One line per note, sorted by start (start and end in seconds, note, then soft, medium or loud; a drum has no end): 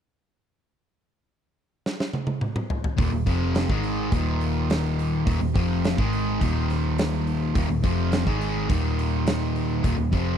1.86 snare medium
2.00 snare medium
2.13 high tom medium
2.27 high tom medium
2.41 mid tom medium
2.56 mid tom medium
2.70 floor tom medium
2.84 floor tom loud
2.97 3.12 D#1 loud
2.97 3.11 D#2 medium
2.97 3.12 A#2 medium
2.97 kick loud
2.97 open hi-hat medium
3.12 3.26 D#1 medium
3.12 3.26 D#2 medium
3.12 3.26 A#2 medium
3.26 3.67 F1 loud
3.26 3.69 F2 medium
3.26 3.69 C3 medium
3.26 3.69 F3 medium
3.26 kick medium
3.26 open hi-hat medium
3.55 snare loud
3.55 open hi-hat medium
3.69 4.09 G#1 medium
3.69 4.11 G#2 medium
3.69 4.12 D#3 medium
3.69 4.12 G#3 medium
3.69 kick loud
3.83 open hi-hat soft
4.11 5.23 D#1 medium
4.11 5.25 D#2 medium
4.11 5.25 A#2 medium
4.11 5.26 D#3 medium
4.11 kick loud
4.11 open hi-hat medium
4.41 open hi-hat medium
4.70 snare loud
4.70 open hi-hat medium
4.99 open hi-hat medium
5.26 5.40 D#1 medium
5.26 5.40 D#2 medium
5.26 5.40 A#2 medium
5.26 kick loud
5.26 open hi-hat medium
5.41 5.54 D#1 medium
5.41 5.55 D#2 medium
5.41 5.55 A#2 medium
5.55 5.95 F1 medium
5.55 5.97 F2 medium
5.55 5.97 C3 medium
5.55 5.98 F3 medium
5.55 kick loud
5.55 open hi-hat soft
5.84 snare loud
5.84 open hi-hat medium
5.98 6.38 G#1 medium
5.98 6.40 G#2 medium
5.98 6.40 D#3 medium
5.98 6.41 G#3 medium
5.98 kick loud
6.13 open hi-hat soft
6.41 7.52 D#1 medium
6.41 7.54 D#2 medium
6.41 7.55 A#2 medium
6.41 7.55 D#3 loud
6.41 kick loud
6.41 open hi-hat medium
6.70 snare soft
6.70 open hi-hat medium
6.98 snare loud
6.98 open hi-hat medium
7.27 open hi-hat soft
7.55 7.69 D#1 medium
7.55 7.69 D#2 medium
7.55 7.69 A#2 medium
7.55 kick loud
7.55 open hi-hat medium
7.69 7.83 D#1 medium
7.69 7.83 D#2 medium
7.69 7.83 A#2 medium
7.83 8.24 F1 loud
7.83 8.26 F2 medium
7.83 8.25 C3 medium
7.83 8.26 F3 medium
7.83 kick loud
7.83 open hi-hat soft
8.12 snare loud
8.12 open hi-hat medium
8.26 8.67 G#1 medium
8.26 8.68 G#2 medium
8.26 8.68 D#3 medium
8.26 8.69 G#3 loud
8.26 kick medium
8.41 open hi-hat soft
8.68 9.80 D#1 loud
8.68 9.82 D#2 medium
8.68 9.82 A#2 medium
8.68 9.83 D#3 loud
8.68 kick loud
8.68 open hi-hat medium
8.99 open hi-hat medium
9.27 snare loud
9.27 open hi-hat medium
9.56 open hi-hat soft
9.83 9.97 D#1 medium
9.83 9.96 D#2 medium
9.83 9.97 A#2 loud
9.83 kick loud
9.83 open hi-hat medium
9.97 10.11 D#1 medium
9.97 10.12 D#2 medium
9.97 10.12 A#2 medium
10.12 10.38 F1 medium
10.12 10.38 F2 medium
10.12 10.38 C3 medium
10.12 10.38 F3 medium
10.12 kick medium
10.12 open hi-hat soft